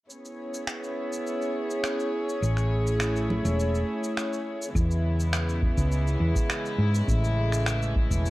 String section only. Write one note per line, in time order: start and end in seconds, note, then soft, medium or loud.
0.09 2.40 B3 medium
0.09 4.72 C#4 medium
0.09 2.40 E4 medium
0.09 4.71 G#4 medium
0.09 4.72 C#5 medium
2.43 4.73 A3 medium
2.43 4.73 E4 medium
4.76 8.30 C#3 medium
4.76 7.06 E3 medium
4.76 8.30 G#3 medium
4.76 7.06 B3 medium
4.76 8.30 E4 medium
7.08 8.30 E3 medium
7.08 8.30 A3 medium